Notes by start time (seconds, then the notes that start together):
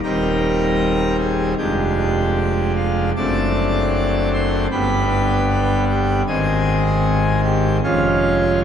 0.03 D#1 D#2 G3 C4 D#4 A#4 G5 A#5
1.19 G#4 G#5
1.58 F1 F2 G#3 D4 G4 G5
2.75 F4 F5
3.16 F#1 F#2 A3 C4 D4 D5 A5 D6
4.33 C5 C6
4.71 G1 G2 G3 B3 D4 B4 G5 B5
5.89 G4 G5
6.27 G#1 G#2 D#3 C4 G#4 D#5 G#5
7.43 G4 G5
7.83 F1 F2 F3 G#3 C#4 F4 C#5 F5